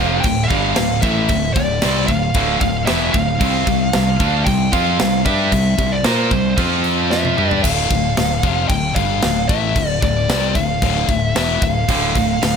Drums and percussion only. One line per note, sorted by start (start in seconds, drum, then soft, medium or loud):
0.24 kick loud
0.24 crash medium
0.50 kick loud
0.50 crash medium
0.76 snare loud
0.76 crash medium
1.02 kick loud
1.02 crash medium
1.28 kick medium
1.28 crash medium
1.56 kick loud
1.56 crash medium
1.82 snare loud
1.82 crash medium
2.08 kick medium
2.08 crash medium
2.34 kick loud
2.34 crash medium
2.61 kick medium
2.61 crash medium
2.87 snare loud
2.87 crash medium
3.14 kick loud
3.14 crash medium
3.41 kick loud
3.41 crash medium
3.67 kick loud
3.67 crash medium
3.93 snare loud
3.93 crash medium
4.20 kick loud
4.20 crash medium
4.47 kick medium
4.47 crash medium
4.73 kick loud
4.73 crash medium
4.99 snare loud
4.99 crash medium
5.26 kick loud
5.26 crash medium
5.52 kick medium
5.52 crash medium
5.79 kick loud
5.79 crash medium
6.04 snare loud
6.04 crash medium
6.31 kick medium
6.31 crash medium
6.58 kick loud
6.58 crash medium
6.84 crash medium
7.11 snare medium
7.25 high tom medium
7.38 mid tom medium
7.51 floor tom medium
7.64 kick loud
7.64 crash loud
7.91 kick loud
7.91 crash medium
8.17 snare loud
8.17 crash medium
8.43 kick loud
8.43 crash medium
8.70 kick loud
8.70 crash medium
8.96 kick loud
8.96 crash medium
9.22 snare loud
9.22 crash medium
9.49 kick loud
9.49 crash medium
9.76 kick medium
9.76 crash medium
10.02 kick loud
10.02 crash medium
10.29 snare loud
10.29 crash medium
10.55 kick medium
10.55 crash medium
10.82 kick loud
10.82 crash medium
11.09 kick medium
11.09 crash medium
11.36 snare loud
11.36 crash medium
11.62 kick loud
11.62 crash medium
11.89 kick loud
11.89 crash medium
12.15 kick loud
12.15 crash medium
12.42 snare loud
12.42 crash medium